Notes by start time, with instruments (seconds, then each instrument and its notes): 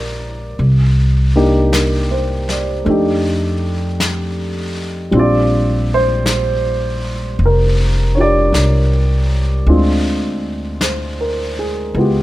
Already playing: upright bass A#1, grand piano A#3 D4 F4 G4 A#4 D5
0.59 upright bass C2, brush sweep
1.36 grand piano A#3 D4 D#4 G4
1.73 grand piano A#4, brush sweep, snare, hi-hat pedal
2.11 grand piano C5
2.49 grand piano D5, snare
2.85 upright bass F2, grand piano A3 D4 D#4, brush sweep
2.90 grand piano G4
4.00 brush sweep, snare, hi-hat pedal
5.11 upright bass A#1, grand piano G3 C4 D4, brush sweep
5.17 grand piano F4 D5
5.94 grand piano C5
6.26 brush sweep, snare, hi-hat pedal
7.39 upright bass F1, brush sweep
7.46 grand piano A#4
8.15 grand piano D4 F4 C#5
8.20 grand piano G4 D5
8.52 upright bass C2, brush sweep, snare, hi-hat pedal
9.66 upright bass D2, grand piano G#3 C4 D4 F4, brush sweep
10.81 grand piano C5, brush sweep, snare, hi-hat pedal
11.21 grand piano A#4
11.59 grand piano G#4
11.94 upright bass C#2, grand piano G#3 B3 F4, brush sweep
12.01 grand piano G4